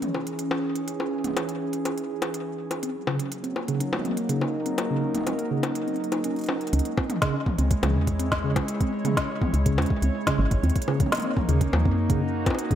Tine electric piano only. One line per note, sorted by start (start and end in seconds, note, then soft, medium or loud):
2.83 2.92 C4 medium
3.07 3.19 C#3 medium
3.19 3.29 C#4 medium
3.44 3.53 C4 medium
3.68 3.80 C#3 medium
3.80 3.90 C#4 medium
4.05 4.14 C4 medium
4.29 4.41 C#3 loud
4.41 4.51 C#4 medium
4.66 4.75 C4 medium
4.90 5.02 C#3 medium
5.02 5.12 C#4 medium
5.27 5.36 C4 medium
5.51 5.63 C#3 medium
5.63 5.73 C#4 medium
5.87 5.97 C4 medium
6.12 6.18 D#4 medium
6.24 6.34 C#4 loud
6.49 6.54 C#4 medium
6.73 6.83 C#4 medium
6.97 7.07 C4 medium
7.22 7.33 C#3 loud
7.34 7.43 C#4 medium
7.59 7.68 C4 medium
7.83 7.94 C#3 loud
7.95 8.05 C#4 medium
8.19 8.29 C4 medium
8.44 8.55 C#3 loud
8.56 8.65 C#4 medium
8.81 8.90 C4 medium
9.05 9.16 C#3 loud
9.17 9.26 C#4 medium
9.41 9.51 C4 medium
9.66 9.77 C#3 loud
9.78 9.87 C#4 medium
10.02 10.12 C4 medium
10.27 10.38 C#3 loud
10.39 10.48 C#4 medium
10.63 10.73 C4 medium
10.88 10.99 C#3 loud
11.00 11.09 C#4 medium
11.24 11.34 C4 medium
11.49 11.60 C#3 loud
11.61 11.70 C#4 medium
11.85 11.95 C4 medium
12.10 12.21 C#3 loud
12.22 12.31 C#4 medium
12.46 12.56 C4 medium
12.71 12.75 C#3 loud